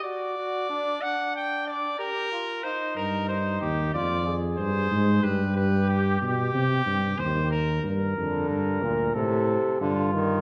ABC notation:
X:1
M:4/4
L:1/8
Q:1/4=92
K:Cm
V:1 name="Trumpet"
d3 ^f g d B2 | c B c G d z c2 | =B B G G3 c _B | z8 |]
V:2 name="Flugelhorn"
^F F D D3 G =F | E2 E2 F A3 | G6- G z | B2 B2 =A2 F2 |]
V:3 name="Trombone" clef=bass
z8 | z8 | z8 | z D,2 B,, C,2 D, E, |]
V:4 name="Tuba" clef=bass
z8 | z G,,2 E,, F,,2 G,, A,, | G,,3 =B,, C, G,, E,,2 | G,, F,, G,, D,, =A,, z G,,2 |]